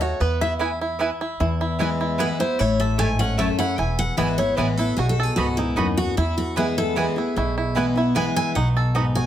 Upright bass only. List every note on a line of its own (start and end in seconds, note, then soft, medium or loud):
0.00 0.14 D#2 medium
0.20 1.09 E2 loud
1.40 2.29 E2 medium
2.60 3.49 A1 loud
3.78 4.08 E1 medium
4.18 4.52 G#1 medium
4.58 4.92 A1 loud
4.97 5.27 B1 medium
5.37 5.71 C#2 medium
5.77 6.11 D#2 medium
6.17 7.06 E2 loud
7.36 8.25 B1 medium
8.56 9.26 B1 medium